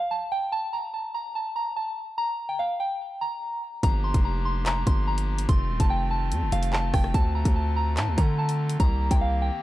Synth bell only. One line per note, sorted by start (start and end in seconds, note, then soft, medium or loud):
0.11 0.27 A5 medium
0.32 0.47 G5 medium
0.52 0.68 A5 loud
0.73 0.89 A#5 medium
0.94 1.09 A5 medium
1.14 1.30 A#5 medium
1.35 1.51 A5 medium
1.56 1.71 A#5 medium
1.76 1.92 A5 medium
2.18 2.47 A#5 loud
2.49 2.57 G5 medium
2.59 2.75 F5 medium
2.80 3.19 G5 medium
3.21 3.80 A#5 medium
3.83 3.99 A#5 loud
4.04 4.20 C6 medium
4.25 4.40 A#5 medium
4.45 4.61 C6 medium
4.66 4.82 A#5 medium
4.87 5.02 C6 medium
5.07 5.23 A#5 medium
5.49 5.78 C6 medium
5.80 5.88 A5 medium
5.90 6.06 G5 medium
6.11 6.50 A5 medium
6.52 6.68 F5 medium
6.73 6.89 A5 medium
6.94 7.09 G5 medium
7.14 7.30 A5 loud
7.35 7.51 A#5 medium
7.56 7.71 A5 medium
7.76 7.92 A#5 medium
7.97 8.13 A5 medium
8.18 8.33 A#5 medium
8.38 8.54 A5 medium
8.80 9.09 A#5 loud
9.11 9.19 G5 medium
9.21 9.37 F5 medium
9.42 9.62 G5 medium